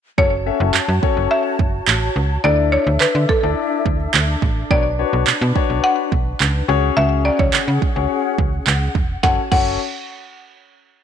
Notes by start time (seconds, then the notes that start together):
0.18 F#1 C#4 F#4 A4 C#5 A5, kick
0.46 C#4 F#4 A4 E5
0.60 F#1
0.74 F#2, clap
0.88 F#2
1.02 C#4 F#4 A4 C#5, kick
1.17 F#1
1.31 E5
1.59 F#1, kick
1.88 A1, clap
2.16 C#2
2.44 D2 D4 E4 A4 D5 E5
2.72 C#5
2.87 D2
3.00 D3 B4, clap
3.15 D3
3.29 A4 D5, kick
3.43 D2 D4 E4 A4 D5
3.86 D2, kick
4.14 D2, clap
4.42 A1, kick
4.70 B1 D4 F#4 B4 C#5 D5, kick
4.99 D4 F#4 B4 C#5
5.13 B1
5.27 B2, clap
5.41 B2
5.55 D4 F#4 B4 C#5, kick
5.70 B1
5.84 F#5
6.12 B1, kick
6.40 C#2, clap
6.68 C#2 C#4 F#4 G#4 C#5 F#5
6.97 C#2 E5
7.25 D5
7.39 C#2 C#5, kick
7.53 C#3, clap
7.68 C#3
7.82 G#4 C#5, kick
7.96 C#2 C#4 F#4 G#4 C#5
8.38 C#2, kick
8.67 C#2, clap
8.95 E1, kick
9.23 F#1 C#4 F#4 A4 C#5 F#5 A5, kick, snare
9.52 F#1 C#4 F#4 A4 C#5 F#5, kick, crash